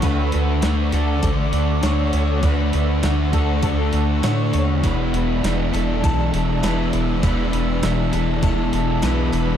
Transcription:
<<
  \new Staff \with { instrumentName = "Ambient pad" } { \time 4/4 \key d \lydian \tempo 4 = 100 << { d'''1 | cis'''1 | e'''1~ | e'''1 | } \\ { <d'' fis''>1~ | <d'' fis''>1 | <d'' a''>1~ | <d'' a''>1 | } >> }
  \new Staff \with { instrumentName = "Twelve-string acoustic guitar" } { \time 4/4 \key d \lydian b'4 r8 a'8 a'4 cis''8 cis''8 | b'4 r8 a'8 a'4 cis''8 cis''8 | b'4 r8 a'8 a''4 b'8 b'8 | b'4 r8 a'8 a''4 b'8 b'8 | }
  \new Staff \with { instrumentName = "Overdriven electric guitar" } { \time 4/4 \key d \lydian <d a d' fis'>8 <a d' fis'>8 <d a d' fis'>8 <a d' fis'>4 <a d' fis'>8 <d a d' fis'>4 | <d a d' fis'>8 <a d' fis'>8 <d a d' fis'>8 <a d' fis'>4 <a d' fis'>8 <d a d' fis'>4 | <e, b, e gis d' e'>8 <e gis d' e'>8 <e gis d' e'>8 <e gis d' e'>4 <e gis d' e'>8 <e gis d' e'>4 | <e, b, e gis d' e'>8 <e gis d' e'>8 <e gis d' e'>8 <e gis d' e'>4 <e gis d' e'>8 <e gis d' e'>4 | }
  \new Staff \with { instrumentName = "Distorted electric guitar" } { \clef bass \time 4/4 \key d \lydian <d a d'>4 <d a d'>8 <a d'>8 <d a d'>4 <d a d'>4 | <d a d'>4 <d a d'>8 <a d'>8 <d a d'>4 <d a d'>4 | <e, b, e>4 <e, b, e>8 <b, e>8 <e, b, e>4 <e, b, e>4 | <e, b, e>4 <e, b, e>8 <b, e>8 <e, b, e>4 <e, b, e>4 | }
  \new Staff \with { instrumentName = "Sub bass" } { \clef bass \time 4/4 \key d \lydian d,8 d,8 d,8 d,8 a,,8 d,8 d,8 d,8 | d,8 d,8 d,8 d,8 d,8 d,8 a,8 dis,8 | e,,8 e,,8 e,,8 e,,8 b,,8 e,,8 e,,8 e,,8 | e,,8 e,,8 e,,8 e,,8 e,,8 e,,8 b,,8 e,,8 | }
  \new DrumStaff \with { instrumentName = "Drums" } \drummode { \time 4/4 <hho bd>8 hho8 <hho sn>8 hho8 <hho bd>8 hho8 <hho sn>8 hho8 | <hho bd>8 hho8 <hho sn>8 <hho bd>8 <hho bd>8 hho8 <hho sn>8 hho8 | <hho bd>8 hho8 <hho sn>8 hho8 <hho bd>8 hho8 <hho sn>8 hho8 | <hho bd>8 hho8 <hho sn>8 hho8 <hho bd>8 hho8 <hho sn>8 hho8 | }
>>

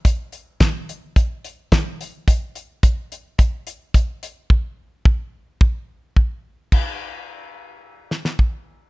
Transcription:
\new DrumStaff \with { instrumentName = "Drums" } \drummode { \time 4/4 \tempo 4 = 108 <hh bd>8 hh8 <hh bd sn>8 hh8 <hh bd>8 hh8 <hh bd sn>8 hh8 | <hh bd>8 hh8 <hh bd>8 hh8 <hh bd>8 hh8 <hh bd>8 hh8 | bd4 bd4 bd4 bd4 | <cymc bd>4 r4 r8 sn16 sn16 bd4 | }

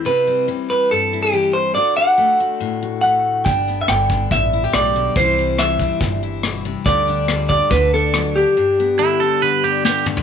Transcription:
<<
  \new Staff \with { instrumentName = "Clean electric guitar" } { \time 4/4 \key g \major \tempo 4 = 141 b'4 r8 b'8 a'8. g'8. c''8 | d''8 fis''2~ fis''8 fis''4 | \tuplet 3/2 { g''4~ g''16 e''16 } g''4 e''4 d''4 | c''4 e''4. r4. |
d''4. d''8 b'8 a'4 g'8~ | g'2. r4 | }
  \new Staff \with { instrumentName = "Clean electric guitar" } { \time 4/4 \key g \major r1 | r1 | r1 | r1 |
r1 | r4 e'8 a'8 b'8 g'8 g'8 r8 | }
  \new Staff \with { instrumentName = "Steel-string acoustic guitar" } { \time 4/4 \key g \major << { <c' e'>8 g4 c'4 e'4. | fis'8 d'4 fis'4 fis'4. | d'8 b4 d'4 e'16 g'4~ g'16 | <e g c' e'>8 g4 c'4 e'4. |
g'8 d'4 g'8 a'8 d'4 d'8 | d'8 b4 d'4 d'4. | } \\ { c4 e4 g,4 e4 | d4 a4 a,4 a4 | g,4 d4 g,4 a,8 b,8 | c4 e4 g,4 b,8 c8 |
d4 g4 d4 fis4 | g,4 d4 d4 d4 | } >> }
  \new Staff \with { instrumentName = "Upright bass" } { \clef bass \time 4/4 \key g \major r1 | r1 | g,,4 g,,4 a,,4 b,,4 | c,2 g,,2 |
d,2 d,2 | r1 | }
  \new DrumStaff \with { instrumentName = "Drums" } \drummode { \time 4/4 r4 r4 r4 r4 | r4 r4 r4 r4 | <hh bd>8 hh8 <hh ss>8 bd8 <hh bd>4 <hh ss>4 | <hh bd>8 hh8 <hh ss>8 bd8 <hh bd>4 <hh ss>4 |
<hh bd>8 hh8 <hh ss>8 bd8 <hh bd>4 <hh ss>4 | r4 r4 r4 sn8 toml16 tomfh16 | }
>>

